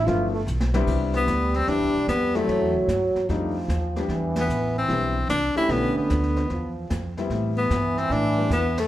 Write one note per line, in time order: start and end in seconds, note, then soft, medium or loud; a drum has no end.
0.06 0.46 G1 medium
0.06 0.31 F3 medium
0.06 0.31 A3 medium
0.06 0.31 B3 medium
0.06 0.31 D4 medium
0.06 0.32 E4 medium
0.06 0.32 F4 loud
0.06 brush sweep soft
0.06 snare medium
0.32 0.41 A3 loud
0.47 0.86 B1 loud
0.47 hi-hat pedal medium
0.60 snare medium
0.74 1.25 G3 loud
0.74 1.25 B3 medium
0.74 1.25 C4 medium
0.74 1.25 D4 medium
0.74 1.25 E4 loud
0.74 snare loud
0.87 1.26 C2 medium
0.87 2.49 G3 loud
0.87 brush sweep soft
0.87 kick medium
0.87 snare soft
0.87 crash medium
1.14 1.57 B3 medium
1.14 snare soft
1.27 1.66 D2 medium
1.27 snare medium
1.27 hi-hat pedal medium
1.54 1.70 C4 medium
1.54 snare soft
1.67 1.82 E2 medium
1.67 1.92 G3 medium
1.67 1.92 B3 medium
1.67 1.92 D4 medium
1.67 2.08 D4 loud
1.67 1.92 E4 medium
1.67 brush sweep soft
1.67 snare soft
1.81 1.94 C2 medium
1.94 2.07 B1 medium
2.07 2.47 F2 medium
2.07 2.37 B3 medium
2.07 snare medium
2.07 hi-hat pedal medium
2.35 2.86 F#3 medium
2.35 2.86 A3 medium
2.35 2.75 A3 medium
2.35 2.86 C4 medium
2.35 2.86 E4 medium
2.35 snare soft
2.47 2.61 F#2 medium
2.47 3.29 F#3 loud
2.47 brush sweep soft
2.47 snare soft
2.61 2.73 E2 medium
2.74 2.87 C2 medium
2.88 3.13 G2 medium
2.88 snare medium
2.88 hi-hat pedal medium
3.15 muted upright bass stroke soft
3.15 snare soft
3.27 3.68 F2 medium
3.27 4.10 F3 loud
3.27 3.53 G3 medium
3.27 3.53 A3 medium
3.27 3.53 D4 medium
3.27 3.53 D#4 medium
3.27 brush sweep medium
3.27 snare soft
3.68 4.07 D#2 medium
3.68 snare medium
3.68 hi-hat pedal soft
3.96 4.47 G3 medium
3.96 4.47 B3 medium
3.96 4.47 D4 medium
3.96 4.47 G4 medium
3.96 snare soft
4.08 4.48 E2 medium
4.08 5.47 E3 loud
4.08 brush sweep soft
4.08 snare soft
4.36 4.75 B3 medium
4.36 snare medium
4.36 ride medium
4.48 4.87 A1 medium
4.48 hi-hat pedal medium
4.78 5.27 C4 medium
4.89 5.28 B1 medium
4.89 5.13 G3 medium
4.89 5.13 B3 medium
4.89 5.14 D4 medium
4.89 5.14 E4 medium
4.89 brush sweep medium
4.89 snare soft
5.29 5.54 C2 medium
5.29 5.54 D4 loud
5.29 snare medium
5.29 hi-hat pedal medium
5.55 6.07 A3 medium
5.55 6.07 C#4 medium
5.55 6.07 D4 medium
5.55 5.72 E4 medium
5.55 6.07 G4 medium
5.55 muted upright bass stroke soft
5.55 snare soft
5.69 5.94 B1 medium
5.69 6.51 D3 loud
5.69 5.97 B3 loud
5.69 brush sweep soft
5.69 snare soft
5.96 6.73 B3 medium
5.96 muted upright bass stroke soft
6.10 6.49 D2 medium
6.10 snare medium
6.10 hi-hat pedal medium
6.23 snare soft
6.36 snare soft
6.49 6.89 E2 medium
6.49 7.17 F3 loud
6.49 brush sweep soft
6.49 snare soft
6.90 7.29 F2 medium
6.90 snare medium
6.90 hi-hat pedal medium
7.17 7.68 G3 medium
7.17 7.68 B3 medium
7.17 7.68 C4 medium
7.17 7.68 E4 medium
7.17 snare soft
7.30 7.69 A2 medium
7.30 8.88 E3 loud
7.30 brush sweep soft
7.30 snare soft
7.57 7.99 B3 medium
7.70 8.09 G2 medium
7.70 snare medium
7.70 hi-hat pedal medium
7.98 8.13 C4 medium
7.98 snare soft
8.10 8.49 A2 loud
8.10 8.51 D4 loud
8.10 brush sweep soft
8.10 snare soft
8.38 8.50 G3 medium
8.38 8.50 B3 medium
8.38 8.50 C4 medium
8.38 8.50 E4 medium
8.50 8.88 E2 loud
8.50 8.76 B3 medium
8.50 snare medium
8.50 hi-hat pedal medium
8.78 8.88 A3 medium
8.78 snare medium
8.78 ride medium